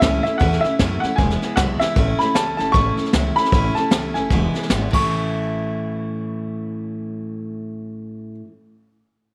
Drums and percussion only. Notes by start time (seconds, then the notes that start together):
0.02 kick, snare, hi-hat pedal
0.26 snare
0.41 kick, snare
0.52 snare
0.64 snare
0.79 kick, snare, hi-hat pedal
1.03 snare
1.18 kick, snare
1.30 snare
1.42 snare
1.57 kick, snare, hi-hat pedal
1.81 snare
1.96 kick, snare
2.20 snare
2.35 snare, hi-hat pedal
2.59 snare
2.74 kick, snare
2.98 snare
3.06 snare
3.13 snare, hi-hat pedal
3.37 snare
3.45 snare
3.52 kick, snare
3.76 snare
3.91 snare, hi-hat pedal
4.15 snare
4.31 kick, snare
4.55 snare
4.63 snare
4.70 snare, hi-hat pedal
4.93 kick, crash